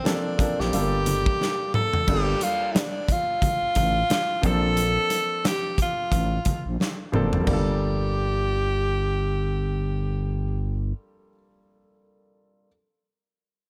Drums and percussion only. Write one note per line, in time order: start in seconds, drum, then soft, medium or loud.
0.05 snare loud
0.05 closed hi-hat medium
0.05 high conga medium
0.39 kick medium
0.39 closed hi-hat medium
0.60 snare soft
0.73 closed hi-hat medium
0.73 muted conga soft
1.06 closed hi-hat medium
1.06 muted conga soft
1.06 low conga medium
1.26 kick loud
1.41 snare medium
1.41 high conga medium
1.74 mid tom loud
1.74 high conga medium
1.93 floor tom medium
2.07 kick loud
2.07 crash medium
2.07 muted conga soft
2.41 closed hi-hat medium
2.41 muted conga medium
2.75 snare loud
2.75 closed hi-hat medium
2.75 high conga medium
3.09 kick medium
3.09 closed hi-hat medium
3.42 kick medium
3.42 closed hi-hat medium
3.42 muted conga medium
3.42 low conga medium
3.75 kick medium
3.75 closed hi-hat medium
3.75 muted conga soft
3.75 low conga medium
4.10 snare loud
4.10 closed hi-hat medium
4.10 high conga medium
4.43 kick loud
4.43 closed hi-hat medium
4.43 high conga medium
4.77 closed hi-hat medium
4.77 muted conga soft
5.10 closed hi-hat medium
5.10 muted conga medium
5.45 snare loud
5.45 closed hi-hat medium
5.45 high conga medium
5.78 kick medium
5.78 closed hi-hat medium
6.12 kick medium
6.12 closed hi-hat medium
6.12 muted conga soft
6.45 kick medium
6.45 closed hi-hat medium
6.45 muted conga medium
6.45 low conga medium
6.80 snare medium
6.80 high conga medium
7.14 mid tom medium
7.14 high conga medium
7.33 floor tom medium
7.47 kick medium
7.47 floor tom medium
7.47 splash medium
7.47 muted conga medium